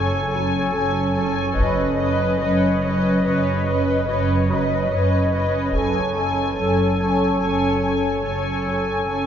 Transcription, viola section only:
0.00 0.31 C#4 soft
0.00 0.31 A4 soft
0.33 0.73 C#4 soft
0.33 0.73 A4 soft
0.74 1.15 C#4 soft
0.74 1.16 A4 soft
1.16 1.57 C#4 soft
1.16 1.57 A4 soft
1.58 1.98 C#4 soft
1.58 1.98 B4 soft
1.99 2.39 C#4 soft
1.99 2.39 B4 soft
2.41 2.82 C#4 soft
2.41 2.82 B4 soft
2.83 3.24 C#4 soft
2.83 3.24 B4 soft
3.25 3.66 C#4 soft
3.25 3.66 B4 soft
3.67 4.08 C#4 soft
3.67 4.08 B4 soft
4.09 4.49 C#4 soft
4.09 4.49 B4 soft
4.50 4.90 C#4 soft
4.50 4.91 B4 soft
4.92 5.32 C#4 soft
4.92 5.33 B4 soft
5.34 5.74 C#4 soft
5.34 5.75 B4 soft
5.76 6.16 C#4 soft
5.76 6.16 A4 soft
6.18 6.58 C#4 soft
6.18 6.58 A4 soft
6.59 7.00 C#4 soft
6.59 7.00 A4 soft
7.02 7.42 C#4 soft
7.02 7.42 A4 soft
7.43 7.83 C#4 soft
7.43 7.83 A4 soft
7.84 8.25 C#4 soft
7.84 8.24 A4 soft
8.25 8.66 C#4 soft
8.25 8.66 A4 soft
8.67 9.08 C#4 soft
8.67 9.07 A4 soft
9.09 9.26 C#4 soft
9.09 9.26 A4 soft

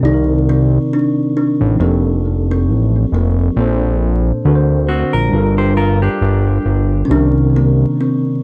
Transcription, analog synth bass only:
0.03 0.79 C2 loud
1.61 1.77 A1 medium
1.80 2.70 F1 loud
2.68 3.06 A1 loud
3.12 3.50 F1 medium
3.57 4.32 A#1 loud
4.45 5.04 D2 loud
5.14 5.30 A#1 medium
5.33 6.09 G1 loud
6.21 6.59 G1 loud
6.66 7.03 G1 medium
7.10 7.86 C2 loud

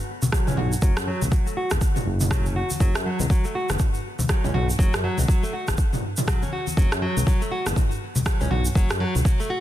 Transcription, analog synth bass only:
0.47 0.54 C#2 medium
0.57 0.75 B1 medium
0.82 0.91 F#1 loud
0.97 1.11 F#2 medium
1.22 1.28 C#2 medium
1.71 1.77 F#1 medium
2.06 2.62 F#1 medium
2.80 2.90 F#1 medium
2.95 3.09 F#2 medium
3.20 3.26 C#2 medium
3.70 3.76 F#1 medium
4.44 4.50 C#2 medium
4.54 4.71 B1 medium
4.79 4.88 F#1 loud
4.94 5.07 F#2 medium
5.19 5.25 C#2 medium
5.68 5.74 F#1 medium
6.77 6.86 F#1 medium
6.92 7.06 F#2 medium
7.17 7.23 C#2 medium
7.67 7.73 F#1 medium
8.41 8.47 C#2 medium
8.51 8.68 B1 medium
8.75 8.85 F#1 loud
8.90 9.04 F#2 medium
9.15 9.21 C#2 medium

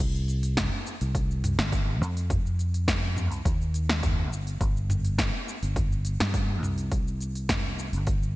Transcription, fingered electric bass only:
0.00 0.68 C2 medium
1.01 1.55 C2 medium
1.59 2.02 G1 loud
2.02 3.32 F2 medium
3.32 3.45 C2 medium
3.46 4.32 D#2 loud
4.32 4.56 G1 loud
4.61 5.30 G1 medium
5.63 6.16 G1 medium
6.21 6.63 G2 loud
6.63 7.94 C2 medium
7.93 8.35 G1 medium

